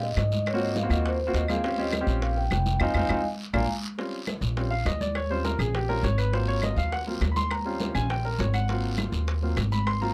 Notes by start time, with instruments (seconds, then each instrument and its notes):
Already playing: upright bass A#2
0.02 vibraphone D#5, high bongo, high conga
0.17 upright bass G#2, vibraphone D#5, high bongo, low bongo, high conga, short guiro, claves
0.32 high bongo, high conga, short guiro
0.46 vibraphone C#5, high bongo, high conga, long guiro, claves
0.54 grand piano A#3 C4 F4 F#4
0.61 vibraphone D#5, high conga
0.76 vibraphone F5, high bongo, high conga, short guiro
0.83 grand piano A#3 C4 F4 F#4
0.90 upright bass D#2, grand piano A#3 C4 F4 F#4, vibraphone D#5, high bongo, high conga, short guiro, claves
1.06 vibraphone C5, high bongo, high conga, long guiro
1.20 high bongo, high conga
1.27 grand piano A#3 C4 F4 F#4
1.33 upright bass D#2, vibraphone D#5, high bongo, low bongo, high conga, short guiro
1.48 grand piano A#3 C4 F4 G#4, vibraphone F5, high bongo, high conga, short guiro, claves
1.64 grand piano C4 C#4 F4 G4, high bongo, high conga, long guiro
1.78 grand piano C4 C#4 F4 G4, vibraphone D#5, high bongo, high conga
1.92 high bongo, high conga, short guiro, claves
2.01 grand piano C4 C#4 F4 G4
2.07 upright bass A#1, high conga, short guiro
2.22 vibraphone F5, high bongo, high conga, long guiro
2.37 vibraphone G5, high bongo, high conga
2.51 upright bass F1, vibraphone G5, high bongo, low bongo, high conga, short guiro, claves
2.66 high bongo, high conga, short guiro
2.80 upright bass F2, grand piano C4 D#4 F4, vibraphone D#5 F5 G#5, low bongo, high conga, long guiro, claves
2.94 upright bass F2, grand piano C4 D#4 F4, vibraphone D#5 F5 G#5, low bongo, high conga, long guiro, claves
3.08 upright bass F2, grand piano C4 D#4 F4, vibraphone D#5 F5 G#5, low bongo, high conga, long guiro, claves
3.53 upright bass A#1, grand piano A#3 D4 F4, vibraphone F5 G#5 A#5, low bongo, high conga, long guiro, claves
3.98 grand piano G3 C4 C#4 F4, high bongo, high conga, long guiro
4.13 high conga
4.27 high bongo, high conga, short guiro, claves
4.41 upright bass A#1, high bongo, high conga, short guiro
4.56 grand piano G3 C4 C#4 F4, high bongo, high conga, long guiro
4.71 grand piano F5, high bongo, high conga
4.85 upright bass D#2, grand piano D#5, high bongo, low bongo, high conga, short guiro, claves
5.01 grand piano D5, high bongo, high conga, short guiro
5.15 grand piano C#5, high bongo, high conga, long guiro, claves
5.30 grand piano G3 C4 C#4 F4 C5, high conga
5.45 grand piano A#4, high bongo, high conga, short guiro
5.59 upright bass A#1, grand piano G#4, high bongo, low conga, short guiro, claves
5.75 grand piano G4, high bongo, high conga, long guiro
5.89 grand piano G3 C4 C#4 F4 A#4, high bongo, high conga
6.03 upright bass G#1, grand piano C#5, high bongo, low bongo, high conga, short guiro
6.18 grand piano B4, short guiro, claves
6.32 grand piano F#3 A#3 C4 F4 C5, high bongo, high conga, long guiro
6.48 grand piano C#5, high conga
6.62 grand piano D#5, high bongo, high conga, short guiro, claves
6.76 upright bass D#2, grand piano F5, high bongo, high conga, short guiro
6.92 grand piano F#5, high bongo, high conga, long guiro
7.07 grand piano F#3 A#3 C4 F4, high bongo, high conga
7.21 upright bass D#2, high bongo, low bongo, high conga, short guiro, claves
7.32 grand piano B5
7.36 grand piano C6, high bongo, high conga, short guiro
7.51 grand piano A#5, high bongo, high conga, long guiro, claves
7.65 grand piano G3 C4 C#4 F4, high conga
7.80 high bongo, high conga, short guiro
7.95 upright bass A#1, grand piano G#5, high bongo, low conga, short guiro, claves
8.10 grand piano G5, high bongo, high conga, long guiro
8.25 grand piano A#4, high bongo, high conga
8.39 upright bass G#1, grand piano C#5, high bongo, low bongo, high conga, short guiro
8.54 grand piano F#5, short guiro, claves
8.68 grand piano F#3 A#3 C4 F4, high bongo, high conga, long guiro
8.84 high conga
8.97 high bongo, high conga, short guiro, claves
9.12 upright bass D#2, high bongo, high conga, short guiro
9.27 high bongo, high conga, long guiro
9.42 grand piano F#3 A#3 C4 F4, high bongo, high conga
9.57 upright bass G#1, high bongo, low bongo, high conga, short guiro, claves
9.72 grand piano B5, high bongo, high conga, short guiro
9.86 grand piano C6, high bongo, high conga, long guiro, claves
10.01 grand piano F#3 A#3 C4 F4 A#5, high conga